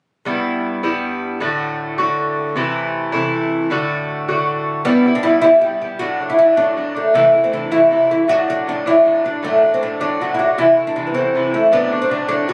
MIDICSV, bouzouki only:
0, 0, Header, 1, 2, 480
1, 0, Start_track
1, 0, Tempo, 381922
1, 323, Time_signature, 6, 3, 24, 8
1, 15749, End_track
2, 0, Start_track
2, 0, Title_t, "Bouzouki"
2, 0, Program_c, 0, 25
2, 319, Note_on_c, 0, 43, 62
2, 327, Note_on_c, 0, 55, 58
2, 330, Note_on_c, 0, 59, 71
2, 342, Note_on_c, 0, 64, 73
2, 1030, Note_off_c, 0, 64, 0
2, 1034, Note_off_c, 0, 59, 0
2, 1042, Note_off_c, 0, 55, 0
2, 1044, Note_off_c, 0, 43, 0
2, 1046, Note_on_c, 0, 64, 61
2, 1049, Note_on_c, 0, 59, 61
2, 1057, Note_on_c, 0, 55, 55
2, 1065, Note_on_c, 0, 43, 52
2, 1759, Note_off_c, 0, 43, 0
2, 1764, Note_on_c, 0, 45, 66
2, 1769, Note_off_c, 0, 55, 0
2, 1769, Note_off_c, 0, 64, 0
2, 1770, Note_off_c, 0, 59, 0
2, 1774, Note_on_c, 0, 50, 63
2, 1779, Note_on_c, 0, 57, 65
2, 1781, Note_on_c, 0, 66, 66
2, 2475, Note_off_c, 0, 66, 0
2, 2488, Note_off_c, 0, 50, 0
2, 2489, Note_off_c, 0, 45, 0
2, 2490, Note_on_c, 0, 66, 65
2, 2494, Note_off_c, 0, 57, 0
2, 2499, Note_on_c, 0, 57, 62
2, 2503, Note_on_c, 0, 50, 57
2, 2513, Note_on_c, 0, 45, 60
2, 3209, Note_off_c, 0, 45, 0
2, 3213, Note_off_c, 0, 66, 0
2, 3214, Note_on_c, 0, 48, 66
2, 3220, Note_off_c, 0, 50, 0
2, 3225, Note_on_c, 0, 52, 81
2, 3226, Note_off_c, 0, 57, 0
2, 3231, Note_on_c, 0, 57, 68
2, 3236, Note_on_c, 0, 64, 65
2, 3910, Note_off_c, 0, 64, 0
2, 3921, Note_off_c, 0, 57, 0
2, 3925, Note_off_c, 0, 52, 0
2, 3925, Note_on_c, 0, 64, 74
2, 3932, Note_off_c, 0, 48, 0
2, 3936, Note_on_c, 0, 57, 59
2, 3940, Note_on_c, 0, 52, 60
2, 3947, Note_on_c, 0, 48, 50
2, 4647, Note_off_c, 0, 48, 0
2, 4652, Note_on_c, 0, 45, 59
2, 4653, Note_off_c, 0, 64, 0
2, 4654, Note_off_c, 0, 57, 0
2, 4657, Note_off_c, 0, 52, 0
2, 4662, Note_on_c, 0, 50, 73
2, 4669, Note_on_c, 0, 57, 78
2, 4674, Note_on_c, 0, 66, 78
2, 5370, Note_off_c, 0, 66, 0
2, 5374, Note_off_c, 0, 57, 0
2, 5376, Note_off_c, 0, 45, 0
2, 5381, Note_off_c, 0, 50, 0
2, 5385, Note_on_c, 0, 66, 65
2, 5390, Note_on_c, 0, 57, 61
2, 5397, Note_on_c, 0, 50, 52
2, 5405, Note_on_c, 0, 45, 58
2, 6085, Note_off_c, 0, 45, 0
2, 6088, Note_off_c, 0, 50, 0
2, 6090, Note_on_c, 0, 43, 59
2, 6093, Note_on_c, 0, 55, 70
2, 6095, Note_off_c, 0, 57, 0
2, 6100, Note_on_c, 0, 59, 71
2, 6103, Note_off_c, 0, 66, 0
2, 6108, Note_on_c, 0, 64, 74
2, 6340, Note_off_c, 0, 64, 0
2, 6349, Note_off_c, 0, 43, 0
2, 6351, Note_off_c, 0, 55, 0
2, 6354, Note_off_c, 0, 59, 0
2, 6355, Note_on_c, 0, 64, 57
2, 6374, Note_on_c, 0, 59, 44
2, 6382, Note_on_c, 0, 55, 38
2, 6579, Note_off_c, 0, 55, 0
2, 6586, Note_on_c, 0, 43, 50
2, 6588, Note_off_c, 0, 64, 0
2, 6594, Note_on_c, 0, 55, 52
2, 6598, Note_off_c, 0, 59, 0
2, 6610, Note_on_c, 0, 59, 51
2, 6618, Note_on_c, 0, 64, 55
2, 6812, Note_off_c, 0, 64, 0
2, 6818, Note_off_c, 0, 59, 0
2, 6820, Note_off_c, 0, 43, 0
2, 6824, Note_off_c, 0, 55, 0
2, 6827, Note_on_c, 0, 64, 60
2, 6833, Note_on_c, 0, 59, 63
2, 6842, Note_on_c, 0, 55, 59
2, 6851, Note_on_c, 0, 43, 53
2, 7067, Note_off_c, 0, 43, 0
2, 7078, Note_off_c, 0, 64, 0
2, 7080, Note_off_c, 0, 55, 0
2, 7081, Note_off_c, 0, 59, 0
2, 7082, Note_on_c, 0, 43, 47
2, 7095, Note_on_c, 0, 55, 52
2, 7102, Note_on_c, 0, 59, 47
2, 7113, Note_on_c, 0, 64, 51
2, 7302, Note_off_c, 0, 64, 0
2, 7312, Note_off_c, 0, 43, 0
2, 7317, Note_off_c, 0, 59, 0
2, 7317, Note_on_c, 0, 64, 39
2, 7318, Note_off_c, 0, 55, 0
2, 7333, Note_on_c, 0, 59, 48
2, 7341, Note_on_c, 0, 55, 36
2, 7537, Note_on_c, 0, 45, 62
2, 7540, Note_off_c, 0, 55, 0
2, 7545, Note_off_c, 0, 59, 0
2, 7545, Note_on_c, 0, 54, 68
2, 7546, Note_off_c, 0, 64, 0
2, 7550, Note_on_c, 0, 57, 68
2, 7557, Note_on_c, 0, 62, 67
2, 7776, Note_off_c, 0, 62, 0
2, 7791, Note_on_c, 0, 62, 43
2, 7793, Note_off_c, 0, 45, 0
2, 7795, Note_off_c, 0, 57, 0
2, 7797, Note_off_c, 0, 54, 0
2, 7810, Note_on_c, 0, 57, 44
2, 7820, Note_on_c, 0, 54, 39
2, 8019, Note_off_c, 0, 54, 0
2, 8023, Note_on_c, 0, 45, 49
2, 8026, Note_off_c, 0, 62, 0
2, 8034, Note_on_c, 0, 54, 46
2, 8036, Note_off_c, 0, 57, 0
2, 8050, Note_on_c, 0, 57, 55
2, 8058, Note_on_c, 0, 62, 55
2, 8230, Note_off_c, 0, 62, 0
2, 8240, Note_off_c, 0, 57, 0
2, 8243, Note_off_c, 0, 54, 0
2, 8245, Note_on_c, 0, 62, 68
2, 8250, Note_off_c, 0, 45, 0
2, 8255, Note_on_c, 0, 57, 60
2, 8258, Note_on_c, 0, 54, 54
2, 8265, Note_on_c, 0, 45, 52
2, 8485, Note_off_c, 0, 45, 0
2, 8497, Note_off_c, 0, 54, 0
2, 8500, Note_on_c, 0, 45, 54
2, 8505, Note_off_c, 0, 57, 0
2, 8507, Note_off_c, 0, 62, 0
2, 8513, Note_on_c, 0, 54, 59
2, 8520, Note_on_c, 0, 57, 51
2, 8526, Note_on_c, 0, 62, 61
2, 8716, Note_off_c, 0, 62, 0
2, 8731, Note_on_c, 0, 62, 45
2, 8734, Note_off_c, 0, 57, 0
2, 8741, Note_off_c, 0, 45, 0
2, 8747, Note_off_c, 0, 54, 0
2, 8749, Note_on_c, 0, 57, 40
2, 8763, Note_on_c, 0, 54, 38
2, 8973, Note_off_c, 0, 57, 0
2, 8973, Note_off_c, 0, 62, 0
2, 8974, Note_on_c, 0, 48, 67
2, 8984, Note_off_c, 0, 54, 0
2, 8988, Note_on_c, 0, 57, 59
2, 8989, Note_on_c, 0, 52, 81
2, 8996, Note_on_c, 0, 64, 69
2, 9209, Note_off_c, 0, 64, 0
2, 9221, Note_off_c, 0, 57, 0
2, 9224, Note_on_c, 0, 64, 49
2, 9231, Note_off_c, 0, 48, 0
2, 9236, Note_on_c, 0, 57, 44
2, 9239, Note_off_c, 0, 52, 0
2, 9254, Note_on_c, 0, 52, 40
2, 9442, Note_off_c, 0, 52, 0
2, 9444, Note_on_c, 0, 48, 52
2, 9453, Note_off_c, 0, 57, 0
2, 9458, Note_on_c, 0, 52, 54
2, 9462, Note_off_c, 0, 64, 0
2, 9468, Note_on_c, 0, 57, 45
2, 9477, Note_on_c, 0, 64, 57
2, 9674, Note_off_c, 0, 64, 0
2, 9683, Note_off_c, 0, 57, 0
2, 9687, Note_off_c, 0, 52, 0
2, 9689, Note_off_c, 0, 48, 0
2, 9689, Note_on_c, 0, 64, 65
2, 9698, Note_on_c, 0, 57, 55
2, 9702, Note_on_c, 0, 52, 61
2, 9713, Note_on_c, 0, 48, 52
2, 9920, Note_off_c, 0, 48, 0
2, 9927, Note_off_c, 0, 52, 0
2, 9935, Note_on_c, 0, 48, 53
2, 9936, Note_off_c, 0, 57, 0
2, 9942, Note_on_c, 0, 52, 54
2, 9945, Note_off_c, 0, 64, 0
2, 9951, Note_on_c, 0, 57, 60
2, 9960, Note_on_c, 0, 64, 67
2, 10155, Note_off_c, 0, 64, 0
2, 10170, Note_on_c, 0, 64, 42
2, 10171, Note_off_c, 0, 57, 0
2, 10177, Note_off_c, 0, 48, 0
2, 10181, Note_off_c, 0, 52, 0
2, 10186, Note_on_c, 0, 57, 43
2, 10198, Note_on_c, 0, 52, 41
2, 10402, Note_off_c, 0, 52, 0
2, 10403, Note_off_c, 0, 57, 0
2, 10404, Note_on_c, 0, 45, 58
2, 10407, Note_on_c, 0, 54, 67
2, 10411, Note_off_c, 0, 64, 0
2, 10419, Note_on_c, 0, 57, 72
2, 10421, Note_on_c, 0, 62, 68
2, 10642, Note_off_c, 0, 62, 0
2, 10657, Note_on_c, 0, 62, 49
2, 10665, Note_off_c, 0, 45, 0
2, 10665, Note_off_c, 0, 57, 0
2, 10667, Note_off_c, 0, 54, 0
2, 10680, Note_on_c, 0, 57, 44
2, 10689, Note_on_c, 0, 54, 38
2, 10892, Note_off_c, 0, 54, 0
2, 10898, Note_off_c, 0, 62, 0
2, 10898, Note_on_c, 0, 45, 49
2, 10899, Note_off_c, 0, 57, 0
2, 10907, Note_on_c, 0, 54, 51
2, 10914, Note_on_c, 0, 57, 55
2, 10924, Note_on_c, 0, 62, 52
2, 11117, Note_off_c, 0, 62, 0
2, 11122, Note_off_c, 0, 57, 0
2, 11129, Note_off_c, 0, 54, 0
2, 11132, Note_on_c, 0, 62, 57
2, 11135, Note_off_c, 0, 45, 0
2, 11137, Note_on_c, 0, 57, 55
2, 11144, Note_on_c, 0, 54, 57
2, 11153, Note_on_c, 0, 45, 49
2, 11361, Note_off_c, 0, 45, 0
2, 11370, Note_off_c, 0, 54, 0
2, 11376, Note_off_c, 0, 57, 0
2, 11376, Note_on_c, 0, 45, 55
2, 11385, Note_on_c, 0, 54, 57
2, 11389, Note_off_c, 0, 62, 0
2, 11391, Note_on_c, 0, 57, 51
2, 11401, Note_on_c, 0, 62, 61
2, 11601, Note_off_c, 0, 62, 0
2, 11616, Note_on_c, 0, 62, 51
2, 11617, Note_off_c, 0, 45, 0
2, 11617, Note_off_c, 0, 57, 0
2, 11621, Note_off_c, 0, 54, 0
2, 11632, Note_on_c, 0, 57, 36
2, 11648, Note_on_c, 0, 54, 38
2, 11837, Note_off_c, 0, 54, 0
2, 11842, Note_off_c, 0, 57, 0
2, 11846, Note_on_c, 0, 45, 66
2, 11852, Note_on_c, 0, 54, 64
2, 11853, Note_off_c, 0, 62, 0
2, 11857, Note_on_c, 0, 57, 70
2, 11868, Note_on_c, 0, 62, 72
2, 12087, Note_off_c, 0, 62, 0
2, 12098, Note_off_c, 0, 57, 0
2, 12102, Note_on_c, 0, 62, 52
2, 12105, Note_off_c, 0, 45, 0
2, 12108, Note_off_c, 0, 54, 0
2, 12114, Note_on_c, 0, 57, 42
2, 12135, Note_on_c, 0, 54, 40
2, 12330, Note_off_c, 0, 54, 0
2, 12331, Note_on_c, 0, 45, 50
2, 12339, Note_off_c, 0, 62, 0
2, 12341, Note_off_c, 0, 57, 0
2, 12345, Note_on_c, 0, 54, 48
2, 12356, Note_on_c, 0, 57, 59
2, 12360, Note_on_c, 0, 62, 55
2, 12556, Note_off_c, 0, 62, 0
2, 12561, Note_off_c, 0, 57, 0
2, 12570, Note_off_c, 0, 45, 0
2, 12570, Note_off_c, 0, 54, 0
2, 12571, Note_on_c, 0, 62, 70
2, 12577, Note_on_c, 0, 57, 57
2, 12585, Note_on_c, 0, 54, 54
2, 12587, Note_on_c, 0, 45, 52
2, 12808, Note_off_c, 0, 45, 0
2, 12823, Note_off_c, 0, 54, 0
2, 12823, Note_on_c, 0, 45, 49
2, 12826, Note_off_c, 0, 62, 0
2, 12829, Note_off_c, 0, 57, 0
2, 12838, Note_on_c, 0, 54, 58
2, 12846, Note_on_c, 0, 57, 60
2, 12855, Note_on_c, 0, 62, 55
2, 13050, Note_off_c, 0, 62, 0
2, 13058, Note_off_c, 0, 45, 0
2, 13064, Note_off_c, 0, 57, 0
2, 13065, Note_on_c, 0, 62, 45
2, 13066, Note_off_c, 0, 54, 0
2, 13080, Note_on_c, 0, 57, 36
2, 13088, Note_on_c, 0, 54, 41
2, 13289, Note_off_c, 0, 57, 0
2, 13292, Note_on_c, 0, 48, 59
2, 13294, Note_off_c, 0, 54, 0
2, 13296, Note_off_c, 0, 62, 0
2, 13299, Note_on_c, 0, 52, 66
2, 13304, Note_on_c, 0, 57, 63
2, 13309, Note_on_c, 0, 64, 62
2, 13519, Note_off_c, 0, 64, 0
2, 13531, Note_off_c, 0, 57, 0
2, 13534, Note_on_c, 0, 64, 51
2, 13546, Note_off_c, 0, 48, 0
2, 13546, Note_on_c, 0, 57, 41
2, 13549, Note_off_c, 0, 52, 0
2, 13562, Note_on_c, 0, 52, 41
2, 13769, Note_off_c, 0, 52, 0
2, 13773, Note_off_c, 0, 64, 0
2, 13774, Note_off_c, 0, 57, 0
2, 13774, Note_on_c, 0, 48, 52
2, 13784, Note_on_c, 0, 52, 47
2, 13789, Note_on_c, 0, 57, 54
2, 13798, Note_on_c, 0, 64, 60
2, 13981, Note_off_c, 0, 64, 0
2, 13989, Note_off_c, 0, 57, 0
2, 13996, Note_on_c, 0, 64, 54
2, 14000, Note_off_c, 0, 52, 0
2, 14004, Note_on_c, 0, 57, 64
2, 14009, Note_off_c, 0, 48, 0
2, 14015, Note_on_c, 0, 52, 52
2, 14021, Note_on_c, 0, 48, 53
2, 14245, Note_off_c, 0, 48, 0
2, 14253, Note_off_c, 0, 52, 0
2, 14257, Note_off_c, 0, 64, 0
2, 14260, Note_off_c, 0, 57, 0
2, 14260, Note_on_c, 0, 48, 52
2, 14268, Note_on_c, 0, 52, 52
2, 14282, Note_on_c, 0, 57, 56
2, 14287, Note_on_c, 0, 64, 52
2, 14482, Note_off_c, 0, 64, 0
2, 14494, Note_off_c, 0, 48, 0
2, 14497, Note_on_c, 0, 64, 43
2, 14498, Note_off_c, 0, 52, 0
2, 14502, Note_off_c, 0, 57, 0
2, 14517, Note_on_c, 0, 57, 40
2, 14527, Note_on_c, 0, 52, 41
2, 14720, Note_off_c, 0, 57, 0
2, 14726, Note_on_c, 0, 45, 62
2, 14727, Note_off_c, 0, 52, 0
2, 14729, Note_off_c, 0, 64, 0
2, 14732, Note_on_c, 0, 54, 65
2, 14735, Note_on_c, 0, 57, 71
2, 14744, Note_on_c, 0, 62, 82
2, 14960, Note_off_c, 0, 62, 0
2, 14975, Note_on_c, 0, 62, 58
2, 14977, Note_off_c, 0, 57, 0
2, 14980, Note_off_c, 0, 45, 0
2, 14983, Note_off_c, 0, 54, 0
2, 14993, Note_on_c, 0, 57, 50
2, 15005, Note_on_c, 0, 54, 39
2, 15194, Note_off_c, 0, 54, 0
2, 15197, Note_on_c, 0, 45, 54
2, 15207, Note_off_c, 0, 57, 0
2, 15209, Note_on_c, 0, 54, 48
2, 15210, Note_off_c, 0, 62, 0
2, 15222, Note_on_c, 0, 57, 54
2, 15231, Note_on_c, 0, 62, 58
2, 15422, Note_off_c, 0, 62, 0
2, 15431, Note_off_c, 0, 57, 0
2, 15434, Note_off_c, 0, 54, 0
2, 15437, Note_off_c, 0, 45, 0
2, 15437, Note_on_c, 0, 62, 58
2, 15446, Note_on_c, 0, 57, 58
2, 15449, Note_on_c, 0, 54, 52
2, 15459, Note_on_c, 0, 45, 51
2, 15670, Note_off_c, 0, 45, 0
2, 15682, Note_off_c, 0, 54, 0
2, 15685, Note_on_c, 0, 45, 49
2, 15689, Note_off_c, 0, 57, 0
2, 15694, Note_off_c, 0, 62, 0
2, 15697, Note_on_c, 0, 54, 57
2, 15704, Note_on_c, 0, 57, 56
2, 15749, Note_off_c, 0, 45, 0
2, 15749, Note_off_c, 0, 54, 0
2, 15749, Note_off_c, 0, 57, 0
2, 15749, End_track
0, 0, End_of_file